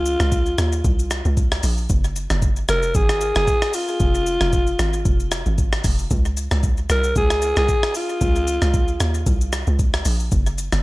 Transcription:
Already playing: log drum bass C#2, alto saxophone F4
0.06 shaker
0.20 log drum bass C#2, cross-stick, shaker
0.32 kick, shaker
0.46 shaker
0.58 log drum bass D#2, cross-stick, shaker
0.73 shaker
0.85 log drum bass C2, kick, shaker
0.99 shaker
1.11 cross-stick, shaker
1.25 log drum bass C#2, shaker
1.37 kick, shaker
1.52 cross-stick, shaker
1.63 log drum bass A#1, open hi-hat, shaker
1.78 shaker
1.90 log drum bass F#1, kick, shaker
2.04 shaker
2.16 shaker
2.30 log drum bass F#1, cross-stick, shaker
2.42 kick, shaker
2.57 shaker
2.69 log drum bass F1, alto saxophone A#4, cross-stick, shaker
2.83 shaker
2.95 log drum bass G#1, alto saxophone G#4, kick, shaker
3.09 cross-stick, shaker
3.21 shaker
3.35 log drum bass F#1, alto saxophone G#4, cross-stick, shaker
3.48 kick, shaker
3.62 cross-stick, shaker
3.74 alto saxophone F4, open hi-hat, shaker
3.88 shaker
4.00 log drum bass F1, kick, shaker
4.15 shaker
4.27 shaker
4.41 log drum bass F1, cross-stick, shaker
4.53 kick, shaker
4.67 shaker
4.79 log drum bass G#1, cross-stick, shaker
4.94 shaker
5.05 log drum bass F1, kick, shaker
5.20 shaker
5.32 cross-stick, shaker
5.46 log drum bass G#1, shaker
5.58 kick, shaker
5.73 cross-stick, shaker
5.84 log drum bass F1, kick, open hi-hat, shaker
5.99 shaker
6.11 log drum bass C#2, kick, shaker
6.25 shaker
6.37 shaker
6.51 log drum bass C#2, cross-stick, shaker
6.63 kick, shaker
6.78 shaker
6.90 log drum bass C2, alto saxophone A#4, cross-stick, shaker
7.04 shaker
7.16 log drum bass C#2, alto saxophone G#4, kick, shaker
7.30 cross-stick, shaker
7.42 shaker
7.57 log drum bass C2, alto saxophone G#4, cross-stick, shaker
7.69 kick, shaker
7.83 cross-stick, shaker
7.95 alto saxophone F4, open hi-hat, shaker
8.10 shaker
8.21 log drum bass C#2, kick, shaker
8.36 shaker
8.48 shaker
8.62 log drum bass C#2, cross-stick, shaker
8.74 kick, shaker
8.88 shaker
9.00 log drum bass D#2, cross-stick, shaker
9.15 shaker
9.27 log drum bass C2, kick, shaker
9.41 shaker
9.53 cross-stick, shaker
9.67 log drum bass C#2, shaker
9.79 kick, shaker
9.94 cross-stick, shaker
10.05 log drum bass A#1, open hi-hat, shaker
10.20 shaker
10.32 log drum bass F#1, kick, shaker
10.47 shaker
10.58 shaker
10.72 log drum bass F#1, cross-stick, shaker

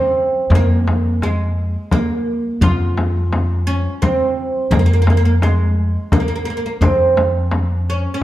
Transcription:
Already playing: oud C4
0.50 upright bass F2, frame drum
0.55 oud A#3
0.88 frame drum
1.22 oud G#3, frame drum
1.91 oud A#3, frame drum
2.61 upright bass F2, oud F4, frame drum
2.97 frame drum
3.33 frame drum
3.67 oud C#4
4.02 oud C4, frame drum
4.71 upright bass F2, oud A#3, frame drum
4.79 oud A#3
4.86 oud A#3
4.93 oud A#3
5.02 oud A#3
5.07 oud A#3, frame drum
5.17 oud A#3
5.25 oud A#3
5.42 oud G#3, frame drum
6.12 oud A#3, frame drum
6.20 oud A#3
6.28 oud A#3
6.35 oud A#3
6.45 oud A#3
6.50 oud A#3
6.57 oud A#3
6.66 oud A#3
6.81 upright bass F2, oud C4, frame drum
7.17 frame drum
7.51 frame drum
7.90 oud C#4
8.14 oud C#4

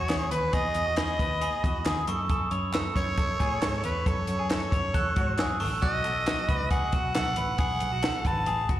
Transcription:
Already playing: soprano saxophone C#5, glockenspiel C#6
0.09 picked electric bass E2, clean electric guitar G#4, snare, clap, closed hi-hat
0.31 picked electric bass D#2, clean electric guitar B4, soprano saxophone B4, closed hi-hat
0.53 picked electric bass E2, clean electric guitar G#4, soprano saxophone D#5, kick, closed hi-hat
0.74 picked electric bass E2, closed hi-hat
0.86 clean electric guitar F#4
0.96 clean electric guitar G#4, soprano saxophone D#5, glockenspiel B5, snare, clap, closed hi-hat
1.19 picked electric bass D#2, clean electric guitar B4, kick, closed hi-hat
1.41 clean electric guitar G#4, glockenspiel B5, closed hi-hat
1.63 picked electric bass E2, clean electric guitar F#4, kick, closed hi-hat
1.85 picked electric bass D#2, clean electric guitar G#4, glockenspiel D#6, snare, clap, closed hi-hat
2.07 picked electric bass F#2, clean electric guitar A4, glockenspiel C#6, closed hi-hat
2.29 clean electric guitar A4, kick, closed hi-hat
2.51 picked electric bass F#2, clean electric guitar C#5, closed hi-hat
2.73 clean electric guitar A4, glockenspiel E6, snare, clap, closed hi-hat
2.95 picked electric bass F#2, clean electric guitar C#5, soprano saxophone C#5, kick, snare, closed hi-hat
3.18 clean electric guitar A4, kick, closed hi-hat
3.40 picked electric bass A2, clean electric guitar G#4, kick, closed hi-hat
3.62 picked electric bass G#2, clean electric guitar A4, snare, clap, closed hi-hat
3.84 picked electric bass E2, soprano saxophone B4, clean electric guitar C#5, closed hi-hat
4.06 picked electric bass F#2, clean electric guitar A4, soprano saxophone C#5, kick, closed hi-hat
4.27 picked electric bass F#2, closed hi-hat
4.39 clean electric guitar G#4
4.50 clean electric guitar A4, soprano saxophone C#5, snare, clap, closed hi-hat
4.72 picked electric bass F#2, clean electric guitar C#5, kick, closed hi-hat
4.94 picked electric bass E2, clean electric guitar A4, glockenspiel F#6, kick, closed hi-hat
5.16 picked electric bass G#2, clean electric guitar F#4, kick, closed hi-hat
5.38 picked electric bass F#2, clean electric guitar G#4, glockenspiel E6, snare, clap, closed hi-hat
5.60 picked electric bass A1, clean electric guitar A4, glockenspiel C#6, open hi-hat
5.82 picked electric bass B1, clean electric guitar F#4, soprano saxophone D#5, glockenspiel F#6, kick, closed hi-hat
6.04 picked electric bass B1, clean electric guitar A4, closed hi-hat
6.26 clean electric guitar F#4, snare, clap, closed hi-hat
6.48 picked electric bass C#2, clean electric guitar B4, kick, closed hi-hat
6.70 clean electric guitar G#4, soprano saxophone F#5, kick, closed hi-hat
6.92 picked electric bass B1, clean electric guitar F#4, kick, closed hi-hat
7.15 picked electric bass B1, clean electric guitar A4, soprano saxophone F#5, snare, clap, closed hi-hat
7.36 picked electric bass A1, clean electric guitar B4, closed hi-hat
7.58 picked electric bass B1, clean electric guitar G#4, soprano saxophone F#5, kick, closed hi-hat
7.80 picked electric bass B1, closed hi-hat
7.92 clean electric guitar F#4
8.03 clean electric guitar A4, snare, clap, closed hi-hat
8.25 picked electric bass G#1, clean electric guitar B4, soprano saxophone A5, kick, closed hi-hat
8.46 picked electric bass A1, clean electric guitar G#4, closed hi-hat
8.69 picked electric bass F#1, clean electric guitar F#4, kick, closed hi-hat

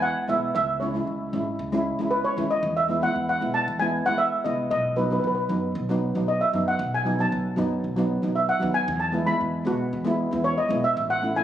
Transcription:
Already playing: upright bass E2, steel pan G#3 B3 E4
0.02 steel pan F#5
0.28 upright bass B1, steel pan G#3 B3 E4 E5
0.55 upright bass C#2, steel pan E5
0.80 steel pan G#3 C#4 E4 C#5
0.94 steel pan G#3 C#4 E4
1.07 upright bass C#2
1.33 upright bass G#1, steel pan G#3 C#4 E4
1.59 upright bass C#2
1.72 steel pan G#3 C#4 E4
1.99 upright bass C#2, steel pan G#3 C#4 E4
2.11 steel pan B4
2.24 steel pan C#5
2.37 upright bass D#2, steel pan G#3 C#4 E4
2.51 steel pan D#5
2.63 upright bass E2
2.77 steel pan E5
2.89 steel pan G#3 B3 E4
3.02 steel pan G#3 B3 E4 F#5
3.15 upright bass E2
3.29 steel pan F#5
3.40 upright bass B1, steel pan G#3 B3 E4
3.54 steel pan A5
3.68 upright bass E2
3.79 steel pan G#3 B3 E4 G#5
4.06 upright bass E2, steel pan G#3 B3 E4 F#5
4.18 steel pan E5
4.44 upright bass C2, steel pan G#3 B3 E4 D#5
4.71 upright bass B1, steel pan D#5
4.96 steel pan F#3 B3 D#4 B4
5.05 steel pan B4
5.10 steel pan F#3 B3 D#4 B4
5.20 steel pan B4
5.24 upright bass B1, steel pan B4
5.35 steel pan B4
5.49 upright bass F#2, steel pan F#3 B3 D#4
5.75 upright bass B1
5.89 steel pan F#3 B3 D#4
6.15 upright bass B1, steel pan F#3 B3 D#4
6.28 steel pan D#5
6.41 steel pan E5
6.53 upright bass F#2, steel pan F#3 B3 D#4
6.68 steel pan F#5
6.79 upright bass B1
6.94 steel pan G#5
7.05 steel pan F#3 B3 D#4
7.19 steel pan F#3 B3 D#4 A5
7.32 upright bass B1
7.56 upright bass F#2, steel pan F#3 B3 D#4
7.84 upright bass B1
7.96 steel pan F#3 B3 D#4
8.22 upright bass B1, steel pan F#3 B3 D#4
8.36 steel pan E5
8.49 steel pan F#5
8.60 upright bass D#2, steel pan F#3 B3 D#4
8.74 steel pan G#5
8.88 upright bass E2
9.00 steel pan A5
9.12 steel pan G#3 B3 E4
9.27 steel pan G#3 B3 E4 B5
9.41 upright bass E2
9.65 upright bass B1, steel pan G#3 B3 F#4
9.93 upright bass E2
10.05 steel pan G#3 B3 E4
10.31 upright bass E2, steel pan G#3 B3 E4
10.44 steel pan C#5
10.58 steel pan D#5
10.69 upright bass B1, steel pan G#3 B3 E4
10.84 steel pan E5
10.97 upright bass A1
11.10 steel pan F#5
11.22 steel pan A3 C#4 E4
11.35 steel pan A3 C#4 E4 G#5

